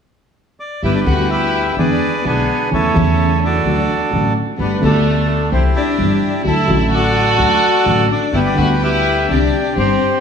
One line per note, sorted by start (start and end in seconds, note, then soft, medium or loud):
0.60 0.82 D5 medium
0.82 1.03 G1 soft
0.82 1.03 G2 soft
0.82 1.03 D3 soft
0.82 1.03 G3 soft
0.82 1.03 B3 soft
0.82 0.94 E4 medium
0.82 1.03 G4 soft
0.82 1.30 G4 medium
0.82 1.31 B4 medium
0.82 0.95 E5 medium
0.94 1.00 D4 medium
0.94 1.01 D5 medium
1.06 1.74 D2 medium
1.06 1.74 D3 medium
1.06 1.74 G3 soft
1.06 1.75 B3 soft
1.06 1.29 F#4 medium
1.06 1.75 G4 medium
1.06 1.29 F#5 medium
1.30 1.68 E4 medium
1.30 1.75 G4 medium
1.30 1.75 B4 medium
1.30 1.71 E5 medium
1.70 1.77 E4 soft
1.70 1.79 E5 medium
1.77 1.97 E2 soft
1.77 1.98 E2 soft
1.77 1.98 D3 soft
1.77 1.98 E3 soft
1.77 1.98 G#3 soft
1.77 1.98 B3 soft
1.77 2.21 D4 medium
1.77 1.98 E4 soft
1.77 2.25 G#4 medium
1.77 2.25 B4 soft
1.77 2.27 D5 medium
2.24 2.45 B1 soft
2.24 2.45 B2 soft
2.24 2.45 D3 soft
2.24 2.45 G#3 soft
2.24 2.68 B3 medium
2.24 2.45 B3 soft
2.24 2.70 D4 soft
2.24 2.45 E4 soft
2.24 2.70 G#4 soft
2.24 2.70 B4 medium
2.71 2.92 E2 soft
2.71 2.91 C#3 soft
2.71 2.91 E3 soft
2.71 2.92 A3 soft
2.71 3.38 C#4 medium
2.71 2.92 E4 soft
2.71 3.63 E4 medium
2.71 3.44 A4 medium
2.71 3.40 C#5 medium
2.93 3.62 E2 medium
2.93 3.63 E2 medium
2.93 3.61 C#3 medium
2.93 3.62 E3 medium
2.93 3.62 A3 medium
2.93 3.63 E4 medium
3.42 4.32 D4 medium
3.42 4.33 F#4 medium
3.42 4.33 A4 soft
3.42 4.33 D5 medium
3.65 3.85 D2 medium
3.65 3.86 D2 soft
3.65 3.85 D3 soft
3.65 3.86 F#3 soft
3.65 3.86 A3 soft
3.65 3.86 F#4 soft
4.11 4.31 A1 soft
4.11 4.32 A1 medium
4.11 4.32 A2 soft
4.11 4.32 D3 soft
4.11 4.32 F#3 soft
4.11 4.32 A3 soft
4.11 4.32 F#4 soft
4.58 4.78 G1 soft
4.58 4.79 G1 medium
4.58 4.78 G2 soft
4.58 4.77 D3 soft
4.58 4.78 A3 soft
4.58 4.80 B3 medium
4.58 4.78 B3 soft
4.58 4.84 D4 soft
4.58 4.78 G4 soft
4.58 4.81 B4 medium
4.81 5.48 D2 medium
4.81 5.49 D2 medium
4.81 5.48 D3 medium
4.81 5.48 A3 soft
4.81 5.48 A3 medium
4.81 5.48 B3 medium
4.81 5.49 G4 medium
4.81 5.49 A4 medium
4.86 5.50 D4 soft
5.51 5.71 C2 soft
5.51 5.72 C2 medium
5.51 5.71 C3 soft
5.51 5.71 E3 soft
5.51 5.71 G3 soft
5.51 5.71 C4 soft
5.51 5.62 C4 medium
5.51 6.42 E4 soft
5.51 5.71 G4 soft
5.51 5.75 G4 soft
5.51 5.64 C5 medium
5.74 6.41 D4 medium
5.74 6.42 G4 soft
5.74 6.42 D5 medium
5.97 6.18 G1 soft
5.97 6.18 G1 medium
5.97 6.18 G2 soft
5.97 6.18 E3 soft
5.97 6.18 G3 soft
5.97 6.18 C4 soft
5.97 6.18 G4 soft
6.43 6.64 D2 soft
6.43 6.65 D2 medium
6.43 6.64 D3 soft
6.43 6.64 F#3 soft
6.43 6.64 A3 soft
6.43 6.89 E4 medium
6.43 6.64 F#4 soft
6.43 6.90 E5 medium
6.47 6.94 A4 medium
6.65 7.35 A1 medium
6.65 7.36 A1 medium
6.65 7.34 A2 medium
6.65 7.34 D3 medium
6.65 7.34 F#3 medium
6.65 7.35 A3 medium
6.65 7.36 F#4 medium
6.93 8.06 F#4 medium
6.93 8.08 A4 medium
6.93 8.08 D5 medium
6.93 8.07 F#5 medium
7.37 7.58 D2 soft
7.37 7.59 D2 medium
7.37 7.58 D3 soft
7.37 7.58 F#3 soft
7.37 7.58 A3 soft
7.37 7.58 F#4 soft
7.85 8.06 A1 medium
7.85 8.06 A1 soft
7.85 8.06 A2 soft
7.85 8.06 D3 soft
7.85 8.06 F#3 soft
7.85 8.06 A3 soft
7.85 8.06 F#4 soft
8.10 8.32 D4 medium
8.10 8.35 D5 medium
8.32 8.53 G1 soft
8.32 8.53 G2 soft
8.32 8.53 D3 soft
8.32 8.53 G3 soft
8.32 8.53 B3 soft
8.32 8.54 B3 soft
8.32 8.54 D4 soft
8.32 8.39 E4 medium
8.32 8.53 G4 soft
8.32 8.54 G4 soft
8.32 8.83 G4 medium
8.32 8.82 B4 medium
8.32 8.40 E5 medium
8.46 8.57 D4 medium
8.46 8.57 D5 medium
8.54 9.25 D2 medium
8.54 9.25 D3 medium
8.54 9.24 G3 soft
8.54 9.25 B3 soft
8.54 9.25 B3 medium
8.54 9.25 D4 medium
8.54 8.68 F#4 medium
8.54 9.25 G4 medium
8.54 9.26 G4 medium
8.59 8.69 F#5 medium
8.81 9.25 E4 medium
8.81 9.27 G4 medium
8.81 9.27 B4 medium
8.81 9.32 E5 medium
9.29 9.49 C2 soft
9.29 9.49 C3 soft
9.29 9.49 D3 soft
9.29 9.49 G3 soft
9.29 9.49 C4 soft
9.29 9.50 C4 soft
9.29 9.73 D4 medium
9.29 9.49 D4 soft
9.29 9.49 G4 soft
9.29 9.50 G4 soft
9.29 9.78 G4 medium
9.29 9.74 D5 medium
9.75 9.96 G1 soft
9.75 9.96 G2 soft
9.75 9.96 D3 soft
9.75 9.96 G3 soft
9.75 9.96 C4 soft
9.75 10.20 C4 medium
9.75 9.97 C4 soft
9.75 9.97 D4 soft
9.75 9.96 G4 soft
9.75 9.97 G4 soft
9.75 10.20 G4 medium
9.75 10.20 C5 medium